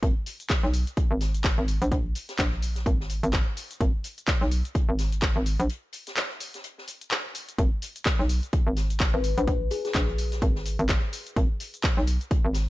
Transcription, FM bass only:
0.03 0.14 G#1 medium
0.64 0.85 B1 loud
1.11 1.56 G#1 loud
1.58 1.79 G#1 medium
1.82 1.90 A#1 medium
1.92 2.14 A#1 loud
2.39 2.84 A#1 loud
2.86 3.21 G#1 medium
3.23 3.45 G#1 loud
3.81 3.92 G#1 medium
4.41 4.63 B1 medium
4.89 5.34 G#1 medium
5.36 5.57 G#1 loud
5.60 5.68 A#1 loud
7.58 7.70 G#1 loud
8.19 8.41 B1 medium
8.67 9.12 G#1 medium
9.14 9.35 G#1 loud
9.38 9.46 A#1 medium
9.48 9.70 A#1 medium
9.95 10.40 A#1 loud
10.42 10.77 G#1 loud
10.79 11.01 G#1 loud
11.36 11.48 G#1 loud
11.97 12.19 B1 medium
12.45 12.69 G#1 loud

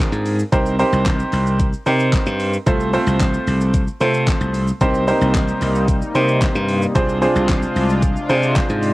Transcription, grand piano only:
0.00 0.37 C4 medium
0.00 0.37 D4 medium
0.00 0.37 F4 medium
0.00 0.37 G#4 medium
0.00 0.37 A#4 loud
0.52 0.74 C4 medium
0.52 0.74 D#4 medium
0.52 0.74 G4 medium
0.52 0.74 A#4 medium
0.52 0.74 C5 loud
0.79 1.66 C4 loud
0.79 1.66 D#4 medium
0.79 1.66 G4 medium
0.79 1.66 A#4 medium
0.79 1.66 C5 loud
1.86 2.51 C4 medium
1.86 2.51 D#4 medium
1.86 2.51 G4 medium
1.86 2.51 A#4 medium
1.86 2.52 C5 medium
2.66 2.88 A3 loud
2.66 2.88 C4 medium
2.66 2.88 F4 medium
2.66 2.88 A4 medium
2.66 2.89 C5 loud
2.93 3.80 A3 loud
2.93 3.80 C4 medium
2.93 3.80 F4 medium
2.93 3.80 A4 medium
2.93 3.80 C5 loud
4.00 4.66 A3 medium
4.00 4.66 C4 medium
4.00 4.66 F4 medium
4.00 4.66 A4 medium
4.00 4.66 C5 medium
4.81 5.03 C4 medium
4.81 5.03 D#4 medium
4.81 5.03 G4 medium
4.81 5.03 A#4 medium
4.81 5.03 C5 loud
5.07 5.94 C4 medium
5.07 5.94 D#4 medium
5.07 5.94 G4 medium
5.07 5.95 A#4 medium
5.07 5.95 C5 loud
6.15 6.80 C4 medium
6.15 6.80 D#4 medium
6.15 6.80 G4 medium
6.15 6.80 A#4 medium
6.15 6.80 C5 medium
6.95 7.17 C4 loud
6.95 7.17 D4 medium
6.95 7.17 F4 medium
6.95 7.17 G#4 medium
6.95 7.17 C5 loud
7.22 8.09 C4 loud
7.22 8.09 D4 medium
7.22 8.09 F4 medium
7.22 8.09 G#4 medium
7.22 8.09 C5 loud
8.29 8.93 C4 medium
8.29 8.93 D4 medium
8.29 8.93 F4 medium
8.29 8.93 G#4 medium
8.29 8.93 C5 medium

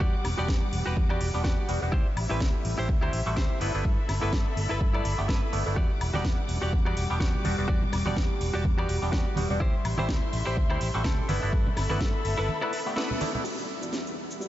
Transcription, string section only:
0.00 3.57 G3 medium
0.00 1.89 F#5 medium
0.00 1.89 D6 medium
1.93 5.73 E5 medium
3.61 5.75 A4 medium
3.61 5.75 B5 medium
5.77 11.25 G3 medium
5.77 7.67 F#5 medium
5.77 9.57 D6 medium
9.61 11.27 E5 medium
9.61 11.27 C6 medium
11.29 13.43 A4 medium
11.29 13.43 E5 medium
11.29 13.43 B5 medium
13.45 14.48 G3 medium
13.45 14.48 E4 medium
13.45 14.48 D5 medium
13.45 14.48 F#5 medium

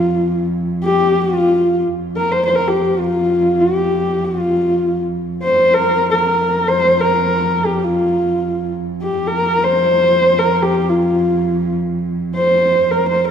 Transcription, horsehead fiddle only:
0.00 0.46 F4 medium
0.84 1.22 G4 medium
1.21 1.82 F4 medium
2.16 2.33 A#4 medium
2.32 2.44 C5 medium
2.45 2.57 C5 medium
2.55 2.69 A#4 medium
2.68 3.01 G4 medium
3.00 3.62 F4 medium
3.60 4.26 G4 medium
4.24 5.00 F4 medium
5.43 5.75 C5 medium
5.74 6.09 A#4 medium
6.11 6.69 A#4 medium
6.68 7.02 C5 medium
7.00 7.67 A#4 medium
7.66 7.85 G4 medium
7.84 8.72 F4 medium
9.02 9.29 G4 medium
9.27 9.65 A#4 medium
9.64 10.40 C5 medium
10.39 10.64 A#4 medium
10.63 10.91 G4 medium
10.89 11.76 F4 medium
12.36 12.93 C5 medium
12.91 13.08 A#4 medium
13.09 13.26 C5 medium
13.28 13.31 A#4 medium

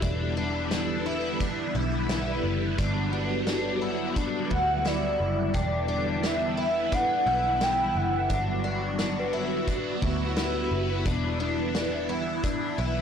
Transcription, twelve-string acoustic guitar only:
0.02 0.36 D4 medium
0.37 0.70 D4 medium
0.72 1.06 D4 medium
1.06 1.40 E4 medium
1.41 1.75 D4 medium
1.75 2.08 E4 medium
2.09 2.78 E4 medium
2.78 3.11 D4 medium
3.13 3.46 D4 medium
3.47 3.81 D4 medium
3.82 4.16 E4 medium
4.16 4.51 D4 medium
4.50 4.83 E4 medium
4.85 5.54 E4 medium
5.54 5.87 D4 medium
5.88 6.22 D4 medium
6.23 6.58 D4 medium
6.57 6.92 E4 medium
6.92 7.26 D4 medium
7.27 7.60 E4 medium
7.61 8.30 E4 medium
8.30 8.63 D4 medium
8.64 8.98 D4 medium
8.99 9.33 D4 medium
9.33 9.68 E4 medium
9.68 10.02 D4 medium
10.03 10.35 E4 medium
10.37 11.06 E4 medium
11.05 11.39 D4 medium
11.40 11.74 D4 medium
11.75 12.09 D4 medium
12.09 12.44 E4 medium
12.44 12.78 D4 medium
12.78 13.02 E4 medium

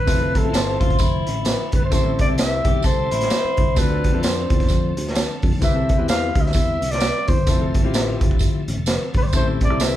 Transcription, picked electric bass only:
0.07 0.38 F1 loud
0.45 0.52 A1 medium
0.54 0.77 G1 medium
0.81 0.97 A1 medium
1.00 1.23 F1 medium
1.27 1.54 A1 medium
1.73 1.81 C2 medium
1.82 1.90 G1 loud
1.92 2.23 A1 loud
2.29 2.60 C2 medium
2.65 2.81 B1 medium
2.84 3.07 C2 medium
3.12 3.28 A1 medium
3.45 muted picked electric bass stroke soft
3.58 3.74 C2 medium
3.77 4.08 D2 loud
4.14 4.45 F2 medium
4.51 4.67 E2 medium
4.70 4.93 F2 medium
4.97 5.24 D2 medium
5.43 5.51 F2 medium
5.53 5.61 B1 medium
5.62 5.93 C2 loud
5.99 6.30 E2 medium
6.36 6.52 D2 medium
6.55 6.78 E2 loud
6.82 7.09 C2 medium
7.29 7.37 E2 medium
7.37 7.46 G1 medium
7.47 7.84 F1 loud
7.84 8.15 A1 medium
8.21 8.49 G1 medium
8.68 8.76 A1 medium
8.78 8.97 F1 medium
9.15 9.22 A1 medium
9.24 9.32 G1 medium
9.34 9.70 A1 loud
9.70 9.96 C2 medium

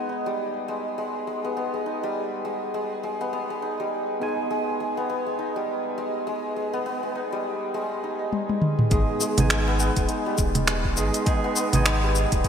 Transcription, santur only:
0.00 0.67 G#3 medium
0.00 1.44 B3 medium
0.09 1.86 D#4 medium
0.26 2.02 G3 medium
0.68 0.97 G#3 medium
0.98 1.26 G#3 medium
1.27 1.73 G#3 medium
1.44 1.56 B3 medium
1.57 3.20 B3 medium
1.74 2.44 G#3 medium
1.86 3.62 D#4 medium
2.03 3.79 G3 loud
2.45 2.73 G#3 medium
2.74 3.02 G#3 medium
3.03 3.49 G#3 medium
3.21 3.33 B3 medium
3.33 4.97 B3 medium
3.50 4.20 G#3 medium
3.62 5.38 D#4 medium
3.80 5.55 G3 medium
4.21 4.49 G#3 medium
4.50 4.79 G#3 medium
4.80 5.25 G#3 medium
4.97 5.09 B3 medium
5.10 6.73 B3 medium
5.26 5.97 G#3 medium
5.39 7.15 D#4 medium
5.56 7.31 G3 medium
5.98 6.26 G#3 medium
6.27 6.55 G#3 medium
6.56 7.02 G#3 medium
6.73 6.85 B3 loud
6.86 9.67 B3 medium
7.03 7.73 G#3 medium
7.15 8.03 D#4 medium
7.32 8.97 G3 medium
7.74 8.91 G#3 medium
8.04 10.09 D#4 medium
8.92 9.20 G#3 medium
9.21 9.49 G#3 loud
9.50 9.96 G#3 medium
9.68 9.79 B3 loud
9.80 11.44 B3 loud
9.97 10.67 G#3 medium
10.09 11.86 D#4 medium
10.26 12.02 G3 loud
10.68 10.96 G#3 loud
10.97 11.26 G#3 loud
11.27 11.72 G#3 medium
11.44 11.56 B3 loud
11.57 12.48 B3 loud
11.74 12.44 G#3 medium
11.86 12.48 D#4 medium
12.03 12.48 G3 loud
12.45 12.48 G#3 loud

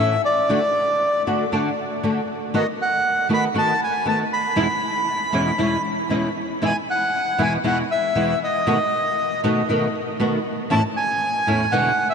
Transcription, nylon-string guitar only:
0.00 0.14 A2 medium
0.00 0.14 E3 medium
0.00 0.14 A3 medium
0.00 0.14 C#4 medium
0.00 0.14 E4 medium
0.49 0.58 D3 medium
0.49 0.58 A3 medium
0.49 0.58 D4 medium
0.49 0.58 F#4 medium
1.27 1.43 D3 medium
1.27 1.43 A3 medium
1.27 1.43 D4 medium
1.27 1.43 F#4 medium
1.52 1.69 D3 medium
1.52 1.69 A3 medium
1.52 1.69 D4 medium
1.52 1.69 F#4 medium
2.03 2.20 D3 medium
2.03 2.20 A3 medium
2.03 2.20 D4 medium
2.03 2.20 F#4 medium
2.54 2.63 D#3 medium
2.54 2.63 A3 medium
2.54 2.63 B3 medium
2.54 2.63 F#4 medium
3.29 3.46 D#3 medium
3.29 3.46 A3 medium
3.29 3.46 B3 medium
3.29 3.47 F#4 medium
3.54 3.72 D#3 medium
3.54 3.72 A3 medium
3.54 3.72 B3 medium
3.54 3.72 F#4 medium
4.05 4.22 D#3 medium
4.05 4.23 A3 medium
4.05 4.23 B3 medium
4.05 4.23 F#4 medium
4.56 4.65 E2 medium
4.56 4.66 B2 medium
4.56 4.65 E3 medium
4.56 4.66 G#3 medium
4.56 4.66 C#4 medium
4.56 4.66 E4 medium
5.33 5.50 E2 medium
5.33 5.50 B2 medium
5.33 5.50 E3 medium
5.33 5.50 G#3 medium
5.33 5.50 C#4 medium
5.33 5.50 E4 medium
5.58 5.76 E2 medium
5.58 5.76 B2 medium
5.58 5.76 E3 medium
5.58 5.76 G#3 medium
5.58 5.76 C#4 medium
5.58 5.76 E4 medium
6.09 6.27 E2 medium
6.09 6.28 B2 medium
6.09 6.27 E3 medium
6.09 6.28 G#3 medium
6.09 6.28 C#4 medium
6.09 6.28 E4 medium
6.62 6.71 E2 medium
6.62 6.71 B2 medium
6.62 6.71 E3 medium
6.62 6.71 G#3 medium
6.62 6.71 B3 medium
6.62 6.71 E4 medium
7.38 7.56 E2 medium
7.38 7.56 B2 medium
7.38 7.56 E3 medium
7.38 7.56 G#3 medium
7.38 7.56 B3 medium
7.38 7.56 E4 medium
7.64 7.81 E2 medium
7.64 7.81 B2 medium
7.64 7.81 E3 medium
7.64 7.81 G#3 medium
7.64 7.82 B3 medium
7.64 7.82 E4 medium
8.15 8.33 E2 medium
8.15 8.33 B2 medium
8.15 8.33 E3 medium
8.15 8.33 G#3 medium
8.15 8.33 B3 medium
8.15 8.33 E4 medium
8.67 8.76 B2 medium
8.67 8.76 D#3 medium
8.67 8.76 A3 medium
8.67 8.76 B3 medium
8.67 8.76 F#4 medium
9.44 9.61 B2 medium
9.44 9.61 D#3 medium
9.44 9.61 A3 medium
9.44 9.61 B3 medium
9.44 9.61 F#4 medium
9.69 9.86 B2 medium
9.69 9.86 D#3 medium
9.69 9.86 A3 medium
9.69 9.87 B3 medium
9.69 9.87 F#4 medium
10.20 10.37 B2 medium
10.20 10.37 D#3 medium
10.20 10.37 A3 medium
10.20 10.37 B3 medium
10.20 10.37 F#4 medium
10.70 10.80 E2 medium
10.70 10.80 A2 medium
10.70 10.80 E3 medium
10.70 10.80 A3 medium
10.70 10.80 C#4 medium
10.70 10.80 E4 medium
11.47 11.64 E2 medium
11.47 11.64 A2 medium
11.47 11.64 E3 medium
11.47 11.65 A3 medium
11.47 11.64 C#4 medium
11.47 11.65 E4 medium
11.72 11.89 E2 medium
11.72 11.89 B2 medium
11.72 11.90 D3 medium
11.72 11.89 G#3 medium
11.72 11.90 B3 medium
11.72 11.90 E4 medium

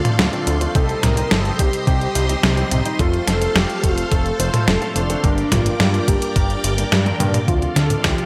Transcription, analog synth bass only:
0.19 0.29 D2 medium
0.47 0.67 D2 medium
0.75 0.95 C2 medium
1.03 1.23 C2 medium
1.31 1.51 G1 medium
1.59 1.69 C2 medium
1.87 2.08 C2 loud
2.15 2.36 C2 medium
2.43 2.64 C2 loud
2.71 2.81 C2 medium
2.99 3.20 F1 loud
3.27 3.48 F1 medium
3.55 3.66 F1 loud
3.83 4.04 F1 medium
4.12 4.32 F1 medium
4.39 4.50 F1 loud
4.68 4.78 F1 medium
4.96 5.16 F1 medium
5.24 5.44 G1 medium
5.52 5.72 G1 medium
5.80 6.00 G2 medium
6.08 6.18 G1 medium
6.36 6.56 G1 loud
6.64 6.84 G1 loud
6.92 7.12 G2 loud
7.20 7.40 G2 loud
7.48 7.68 D2 loud
7.76 7.96 D2 medium
8.04 8.14 D2 loud

